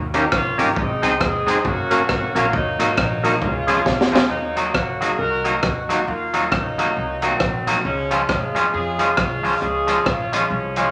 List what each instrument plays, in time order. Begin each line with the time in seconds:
Already playing: upright bass D#2
0.14 clean electric guitar D#3 A#3 C#4 G4, tonewheel organ C#4 D#4 G4 A#4, closed hi-hat
0.32 upright bass C#2, horn section A#3 C#4 F4, kick, cross-stick
0.58 upright bass G1, clean electric guitar D#3 A#3 C#4 G4, tonewheel organ C#4 D#4 G4 A#4, closed hi-hat
0.71 horn section F4
0.76 upright bass G#1, horn section G#3 C4 D#4, kick
1.02 upright bass C#2, clean electric guitar G#3 C4 D#4 G#4, tonewheel organ C4 D#4 G#4 C5, closed hi-hat
1.20 upright bass D#2, horn section C4 D#4 G#4, tonewheel organ G#4 C5, muted clean electric guitar stroke, kick, cross-stick
1.46 clean electric guitar G#3 C4 D#4 G#4, tonewheel organ C4 D#4 G#4 C5, closed hi-hat
1.65 upright bass F#1, horn section A#3 C#4 F#4, kick
1.91 clean electric guitar F#3 A#3 C#4 F#4, tonewheel organ A#3 C#4 F#4 A#4, closed hi-hat
2.09 upright bass G#1, kick, cross-stick
2.35 upright bass A#1, clean electric guitar F#3 A#3 C#4 F#4, tonewheel organ A#3 C#4 F#4 A#4, horn section F4, closed hi-hat
2.53 upright bass D#2, horn section F#3 A#3 D#4, kick
2.79 upright bass G#1, clean electric guitar F#3 A#3 D#4 F#4, tonewheel organ A#3 D#4 F#4 A#4, closed hi-hat
2.97 upright bass A#1, horn section F#3 A#3 D#4, tonewheel organ F#4 A#4, muted clean electric guitar stroke, kick, cross-stick
3.23 clean electric guitar F#3 A#3 D#4 F#4, tonewheel organ A#3 D#4 F#4 A#4, closed hi-hat
3.42 upright bass C#2, horn section G#3 C#4 F4, kick
3.67 clean electric guitar F3 G#3 C#4 F4, horn section F3 G#3 C#4, tonewheel organ G#3 C#4 F4 G#4, closed hi-hat
3.86 upright bass C2, kick, snare
4.01 snare
4.12 upright bass D2, clean electric guitar F3 G#3 C#4 F4, tonewheel organ G#3 C#4 F4 G#4, horn section C#4, snare
4.29 upright bass D#2, horn section F#3 A#3 D#4
4.56 clean electric guitar F#3 A#3 D#4 F#4, closed hi-hat
4.72 upright bass C#2, horn section F#4, muted clean electric guitar stroke, kick, cross-stick
4.99 clean electric guitar F#3 A#3 D#4 F#4, horn section G#4, closed hi-hat
5.18 upright bass C2, horn section D#4 F#4 A#4
5.44 clean electric guitar F#3 A#3 D#4 F#4, closed hi-hat
5.63 upright bass D2, kick, cross-stick
5.89 clean electric guitar F#3 A#3 D#4 F#4, horn section F#4, closed hi-hat
6.08 upright bass D#2, horn section A#3 F4
6.34 clean electric guitar F#3 A#3 D#4 F#4, closed hi-hat
6.51 upright bass C#2, horn section F#3 A#3 D#4, muted clean electric guitar stroke, kick, cross-stick
6.78 clean electric guitar F#3 A#3 D#4 F#4, closed hi-hat
6.96 upright bass C2
7.22 horn section D#3 F#3 C4, clean electric guitar F#3 A#3 D#4 F#4, closed hi-hat
7.40 upright bass A#1, kick, cross-stick
7.67 clean electric guitar F#3 A#3 D#4 F#4, closed hi-hat
7.83 upright bass C#2, horn section F3 G#3 C#4
8.11 clean electric guitar F3 G#3 C#4 F4, closed hi-hat
8.28 upright bass D#2, horn section G#3 C#4 F4, muted clean electric guitar stroke, kick, cross-stick
8.55 clean electric guitar F3 G#3 C#4 F4, closed hi-hat
8.72 upright bass F2, horn section C#4 F4 G#4
8.99 clean electric guitar F3 G#3 C#4 F4, closed hi-hat
9.16 upright bass C2, horn section G#3 C#4 F4, kick, cross-stick
9.43 clean electric guitar F3 G#3 C#4 F4, open hi-hat
9.61 upright bass C#2, horn section C#4 F4 G#4, hi-hat pedal
9.87 clean electric guitar F3 G#3 C#4 F4, closed hi-hat
10.05 upright bass A#1, horn section F4, muted clean electric guitar stroke, kick, cross-stick
10.33 clean electric guitar F3 G#3 C#4 F4, horn section F3 G#3 C#4, closed hi-hat
10.50 upright bass C2
10.76 clean electric guitar F3 G#3 C#4 F4, horn section F3 G#3 C#4, closed hi-hat